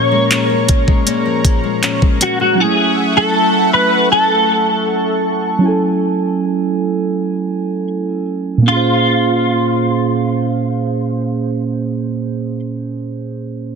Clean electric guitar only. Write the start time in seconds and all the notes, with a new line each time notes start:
Already playing: C#5
2.22 F#4
2.41 F#4
2.60 G#4
3.17 A4
3.73 B4
4.12 A4
6.44 G#4
8.68 F4